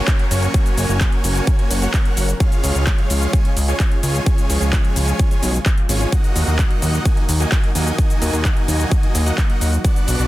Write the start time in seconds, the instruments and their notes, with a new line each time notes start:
Already playing: analog synth pad C#3 F#3 A#3 F#4 A#4, supersaw synth A#3 C#4 F#4 C#5 G#5, downlifter
0.08 kick, clap, closed hi-hat, shaker
0.19 closed hi-hat
0.31 analog synth bass F#1, supersaw synth A#3 C#4 F#4 C#5 G#5, open hi-hat, shaker
0.43 closed hi-hat, shaker
0.54 kick, closed hi-hat, shaker
0.66 closed hi-hat, shaker
0.78 analog synth bass F#1, open hi-hat, shaker
0.89 analog synth bass F#1, closed hi-hat, shaker
1.01 kick, clap, closed hi-hat, shaker
1.12 closed hi-hat
1.24 analog synth bass F#1, open hi-hat, shaker
1.36 closed hi-hat, shaker
1.47 kick, closed hi-hat, shaker
1.59 supersaw synth A#3 C#4 F#4 C#5 G#5, closed hi-hat
1.71 analog synth bass F#1, open hi-hat, shaker
1.82 supersaw synth A#3 C#4 F#4 C#5 F#5, closed hi-hat, shaker
1.94 kick, clap, closed hi-hat, shaker
2.05 supersaw synth A#3 C#4 F#4 C#5 F#5, closed hi-hat
2.17 analog synth bass F#1, open hi-hat, shaker
2.29 closed hi-hat, shaker
2.40 analog synth pad F3 G#3 F4 G#4, supersaw synth G#3 C#4 F4 C#5 F5, kick, closed hi-hat, shaker
2.52 closed hi-hat, shaker
2.64 analog synth bass C#2, open hi-hat, shaker
2.75 analog synth bass C#2, closed hi-hat, shaker
2.87 kick, clap, closed hi-hat, shaker
2.98 closed hi-hat
3.10 analog synth bass C#2, open hi-hat, shaker
3.22 closed hi-hat, shaker
3.33 supersaw synth G#3 C#4 C#5, kick, closed hi-hat, shaker
3.45 closed hi-hat
3.57 analog synth bass C#2, open hi-hat, shaker
3.68 supersaw synth G#3 C#4 F4 C#5 G#5, closed hi-hat, shaker
3.80 kick, clap, closed hi-hat, shaker
3.92 closed hi-hat
4.03 analog synth bass C#2, supersaw synth G#3 C#4 F4 C#5 G#5, open hi-hat, shaker
4.15 closed hi-hat, shaker
4.26 supersaw synth G#3 C#4 C#5 G#5, kick, closed hi-hat, shaker
4.38 closed hi-hat, shaker
4.50 analog synth bass C#2, open hi-hat, shaker
4.61 analog synth bass C#2, closed hi-hat, shaker
4.73 kick, clap, closed hi-hat, shaker
4.85 closed hi-hat
4.96 analog synth bass C#2, open hi-hat, shaker
5.08 closed hi-hat, shaker
5.19 kick, closed hi-hat, shaker
5.31 supersaw synth G#3 C#4 F4 C#5 G#5, closed hi-hat, shaker
5.43 analog synth bass B1, open hi-hat, shaker
5.54 closed hi-hat, shaker
5.66 kick, clap, closed hi-hat, shaker
5.78 closed hi-hat
5.89 analog synth bass G#1, supersaw synth G#3 C#4 F4 C#5 G#5, open hi-hat, shaker
6.01 closed hi-hat, shaker
6.12 analog synth pad A#2 D#3 F#3 D#4 F#4, supersaw synth A#3 D#4 F#4 D#5 F#5, kick, closed hi-hat, shaker
6.24 closed hi-hat, shaker
6.36 analog synth bass D#2, open hi-hat, shaker
6.47 analog synth bass D#2, closed hi-hat, shaker
6.59 kick, clap, closed hi-hat, shaker
6.71 closed hi-hat
6.82 analog synth bass D#2, open hi-hat, shaker
6.94 closed hi-hat, shaker
7.05 supersaw synth A#3 D#4 F#4 D#5 G#5, kick, closed hi-hat, shaker
7.17 closed hi-hat
7.29 analog synth bass D#2, open hi-hat, shaker
7.40 supersaw synth A#3 D#4 F#4 D#5 G#5, closed hi-hat, shaker
7.52 kick, clap, closed hi-hat, shaker
7.64 closed hi-hat
7.75 analog synth bass D#2, supersaw synth A#3 D#4 F#4 D#5 G#5, open hi-hat, shaker
7.87 closed hi-hat, shaker
7.98 supersaw synth A#3 D#4 F#4 D#5 G#5, kick, closed hi-hat, shaker
8.10 closed hi-hat, shaker
8.22 analog synth bass D#2, open hi-hat, shaker
8.33 analog synth bass D#2, closed hi-hat, shaker
8.45 kick, clap, closed hi-hat, shaker
8.57 closed hi-hat
8.68 analog synth bass D#2, open hi-hat, shaker
8.80 closed hi-hat, shaker
8.91 kick, closed hi-hat, shaker
9.03 supersaw synth A#3 D#4 F#4 D#5 G#5, closed hi-hat
9.15 analog synth bass D#2, open hi-hat, shaker
9.26 supersaw synth A#3 D#4 F#4 D#5 F#5, closed hi-hat, shaker
9.38 kick, clap, closed hi-hat, shaker
9.50 supersaw synth A#3 D#4 F#4 D#5 F#5, closed hi-hat
9.61 analog synth bass D#2, open hi-hat, shaker
9.73 closed hi-hat, shaker
9.85 analog synth pad B2 D3 D4, supersaw synth B3 D4 F#4 D5 F#5, kick, closed hi-hat, shaker
9.96 closed hi-hat, shaker
10.08 analog synth bass B1, open hi-hat, shaker
10.19 analog synth bass B1, closed hi-hat, shaker